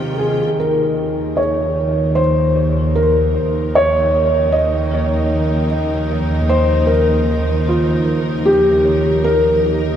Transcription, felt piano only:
0.18 0.57 G#4 medium
0.60 1.39 A#4 medium
1.37 2.18 C#5 medium
2.15 2.97 C5 medium
2.95 3.76 A#4 medium
3.75 4.55 C#5 medium
4.52 5.66 D#5 medium
6.49 6.89 C5 medium
6.86 7.68 A#4 medium
7.68 8.48 F4 medium
8.45 9.26 G4 medium
9.24 9.96 A#4 loud

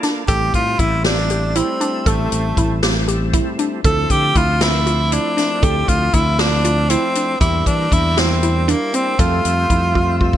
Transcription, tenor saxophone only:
0.28 0.52 G4 loud
0.55 0.81 F4 medium
0.79 1.05 E4 medium
1.05 1.58 D4 medium
1.57 2.09 C4 medium
2.08 2.84 A3 medium
3.86 4.13 A4 medium
4.11 4.39 G4 loud
4.37 4.64 F4 medium
4.62 5.14 E4 medium
5.13 5.65 D4 medium
5.64 5.90 G4 medium
5.89 6.16 F4 medium
6.14 6.41 E4 medium
6.39 6.91 D4 medium
6.89 7.40 C4 medium
7.41 7.68 E4 medium
7.67 7.94 D4 medium
7.93 8.20 E4 medium
8.19 8.71 C4 medium
8.70 8.97 A#3 medium
8.95 9.21 C4 medium
9.20 10.37 F4 medium

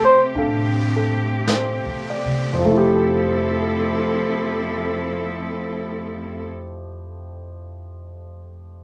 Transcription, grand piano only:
0.00 2.64 A3 soft
0.00 2.65 C4 soft
0.00 2.65 G4 soft
0.00 2.65 E5 soft
0.35 2.64 D4 soft
0.35 0.95 A4 soft
0.35 2.65 F5 soft
0.96 1.75 A4 soft
1.49 2.41 C5 soft
2.10 2.93 D5 soft
2.53 6.37 F2 soft
2.58 6.43 F3 soft
2.65 6.50 A3 soft
2.71 6.56 E4 soft
2.78 6.62 G4 medium

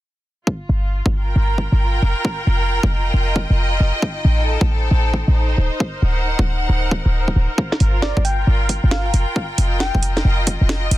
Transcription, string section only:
0.47 4.66 F4 medium
1.18 4.02 A#4 medium
1.18 5.58 G5 medium
2.85 4.66 D#5 medium
4.02 7.58 D#4 medium
4.36 5.58 A4 medium
4.73 8.22 C5 medium
5.77 10.98 A#4 medium
6.02 7.58 F#5 medium
7.58 10.98 F4 medium
7.95 10.98 G5 medium
9.54 10.98 D#5 medium

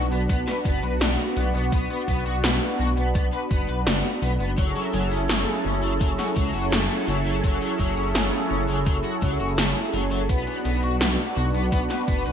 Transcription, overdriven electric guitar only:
0.11 0.20 B3 medium
0.29 0.38 B3 loud
0.47 0.56 B4 medium
0.65 0.79 B3 medium
0.83 0.92 B4 medium
1.01 1.10 D4 loud
1.37 1.46 B3 medium
1.55 1.63 B3 medium
1.73 1.86 B3 medium
1.90 1.99 B3 loud
2.08 2.21 B3 medium
2.26 2.35 F#4 medium
2.44 2.53 B3 loud
2.79 2.88 F#4 loud
2.97 3.06 B3 medium
3.15 3.24 B3 loud
3.33 3.42 B4 medium
3.51 3.64 B3 medium
3.69 3.78 B4 medium
3.86 3.95 D4 loud
4.22 4.31 B3 medium
4.40 4.49 B3 medium
4.58 4.71 F#3 medium
4.76 4.85 F#3 loud
4.94 5.07 F#3 medium
5.11 5.20 C#4 medium
5.29 5.38 F#3 loud
5.65 5.74 C#4 loud
5.83 5.92 F#3 medium
6.01 6.10 F#3 loud
6.19 6.28 F#4 medium
6.36 6.50 F#3 medium
6.54 6.63 F#4 medium
6.72 6.81 A3 loud
7.08 7.17 F#3 medium
7.26 7.35 F#3 medium
7.44 7.57 F#3 medium
7.62 7.71 F#3 loud
7.79 7.93 F#3 medium
7.97 8.06 C#4 medium
8.15 8.24 F#3 loud
8.51 8.60 C#4 loud
8.69 8.78 F#3 medium
8.86 8.95 F#3 loud
9.04 9.13 F#4 medium
9.22 9.36 F#3 medium
9.40 9.49 F#4 medium
9.58 9.67 A3 loud
9.94 10.03 F#3 medium
10.12 10.21 F#3 medium
10.29 10.43 B3 medium
10.47 10.56 B3 loud
10.65 10.79 B3 medium
10.83 10.92 F#4 medium
11.01 11.10 B3 loud
11.36 11.45 F#4 loud
11.54 11.63 B3 medium
11.72 11.81 B3 loud
11.90 11.99 B4 medium
12.08 12.21 B3 medium
12.26 12.32 B4 medium

